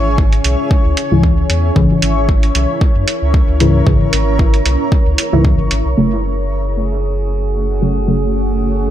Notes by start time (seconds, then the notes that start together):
Already playing: G#1 C#4 E4 G#4 C#5
0.18 kick
0.33 closed hi-hat
0.44 B1, closed hi-hat
0.71 kick
0.85 C#2
0.97 closed hi-hat
1.11 C#2 G#2 C#3 E3
1.23 kick
1.50 E2, closed hi-hat
1.76 C#2 G#2 C#3 E3 A#4, kick
2.02 G#1, closed hi-hat
2.29 kick
2.43 closed hi-hat
2.55 B1, closed hi-hat
2.81 kick
2.96 F#2
3.08 closed hi-hat
3.22 C#2
3.34 kick
3.48 C#2
3.60 G#2 C#3 E3, closed hi-hat
3.87 C#2 G#2 C#3 E3, kick
4.13 G#1, closed hi-hat
4.39 kick
4.54 closed hi-hat
4.65 B1, closed hi-hat
4.92 kick
5.06 C#2
5.18 closed hi-hat
5.33 C#2 G#2 C#3 E3
5.45 kick
5.59 G#1
5.71 G#1, closed hi-hat
5.85 B1
5.97 F#1 C#3 F#3 A3 C#4 F#4 G#4 C#5
7.81 C#3 F#3 A3
8.08 C#3 F#3 A3